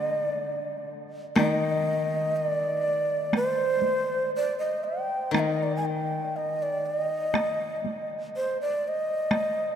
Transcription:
0.00 1.85 D3 soft
0.00 0.05 D5 medium
0.05 0.20 D#5 medium
0.20 0.90 D5 medium
1.36 4.32 D#3 medium
1.36 2.38 D#5 medium
1.36 taiko rim medium
1.36 taiko high medium
2.36 3.34 D5 medium
3.33 4.31 C5 medium
3.33 taiko rim soft
3.33 taiko high soft
3.83 taiko high soft
4.36 4.58 D5 medium
4.59 4.86 D#5 medium
4.84 5.34 G5 medium
5.31 8.32 D#3 soft
5.31 5.40 G5 medium
5.31 taiko rim soft
5.31 taiko high soft
5.39 5.65 D#5 medium
5.63 5.76 D5 medium
5.76 5.87 G#5 medium
5.86 6.38 G5 medium
6.36 6.64 D#5 medium
6.62 6.88 D5 medium
6.86 8.08 D#5 medium
7.34 taiko rim soft
7.34 taiko high medium
7.84 taiko high soft
8.36 8.58 C5 medium
8.61 8.90 D5 medium
8.88 9.76 D#5 medium
9.31 taiko rim soft
9.31 taiko high soft

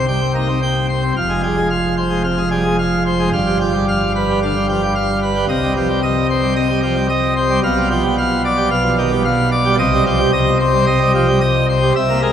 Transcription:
0.00 1.12 C2 medium
0.00 1.13 C3 medium
0.08 0.20 G3 medium
0.08 0.32 G5 medium
0.22 0.34 C4 medium
0.35 0.46 A#3 medium
0.35 0.59 D#4 medium
0.49 0.61 C4 medium
0.62 0.86 G5 medium
0.89 1.12 C5 medium
1.03 1.14 C4 medium
1.16 3.29 F1 medium
1.16 3.29 F2 medium
1.16 1.41 F5 medium
1.29 1.42 G#3 medium
1.43 1.55 G3 medium
1.43 1.67 G#4 medium
1.57 1.69 G#3 medium
1.70 1.95 F5 medium
1.97 2.22 C5 medium
2.10 2.23 G#3 medium
2.24 2.36 C3 medium
2.24 2.49 F5 medium
2.38 2.50 G#3 medium
2.51 2.63 G3 medium
2.51 2.76 G#4 medium
2.65 2.77 G#3 medium
2.79 3.03 F5 medium
3.06 3.29 C5 medium
3.20 3.31 G#3 medium
3.33 5.44 G1 medium
3.33 5.44 G2 medium
3.33 3.57 F5 loud
3.47 3.59 G3 medium
3.61 3.72 F3 medium
3.61 3.85 G4 medium
3.75 3.86 G3 medium
3.88 4.12 F5 medium
4.16 4.39 B4 medium
4.30 4.41 G3 medium
4.42 4.54 D3 medium
4.42 4.66 F5 medium
4.56 4.67 G3 medium
4.69 4.80 F3 medium
4.69 4.92 G4 medium
4.83 4.94 G3 medium
4.95 5.19 F5 medium
5.23 5.45 B4 medium
5.36 5.47 G3 medium
5.49 7.59 C2 medium
5.49 7.59 C3 medium
5.49 5.73 D#5 loud
5.63 5.75 G3 medium
5.77 5.87 F3 medium
5.77 6.00 G4 medium
5.89 6.01 G3 medium
6.03 6.26 D#5 medium
6.30 6.54 C5 medium
6.43 6.55 G3 medium
6.56 6.68 C4 medium
6.56 6.80 D#5 medium
6.69 6.81 G3 medium
6.83 6.94 F3 medium
6.83 7.06 G4 medium
6.96 7.08 G3 medium
7.09 7.33 D#5 medium
7.37 7.59 C5 medium
7.50 7.61 G3 medium
7.64 8.69 B1 medium
7.64 8.69 B2 medium
7.64 7.87 F5 loud
7.77 7.89 G3 medium
7.90 8.02 F3 medium
7.90 8.14 G4 medium
8.04 8.16 G3 medium
8.18 8.42 F5 medium
8.45 8.69 D5 medium
8.57 8.69 G3 medium
8.71 9.76 B1 medium
8.71 9.76 B2 medium
8.71 8.95 F5 medium
8.84 8.96 F3 medium
8.98 9.10 D#3 medium
8.98 9.22 G4 medium
9.12 9.24 G3 medium
9.25 9.49 F5 medium
9.52 9.75 D5 medium
9.65 9.77 G3 medium
9.79 11.92 C2 loud
9.79 11.92 C3 loud
9.79 10.03 D#5 loud
9.93 10.05 G3 medium
10.06 10.18 F3 medium
10.06 10.31 G4 medium
10.19 10.31 G3 medium
10.33 10.57 D#5 medium
10.60 10.84 C5 medium
10.73 10.86 G3 medium
10.86 10.99 C4 medium
10.86 11.11 D#5 medium
11.00 11.13 G3 medium
11.14 11.26 F3 medium
11.14 11.39 G4 medium
11.28 11.40 G3 medium
11.41 11.65 D#5 medium
11.69 11.92 C5 medium
11.83 11.94 G3 medium
11.96 12.32 C2 loud
11.96 12.32 C3 medium
11.96 12.20 E5 loud
12.09 12.22 A#3 medium
12.22 12.32 G#3 medium
12.22 12.32 A#4 medium

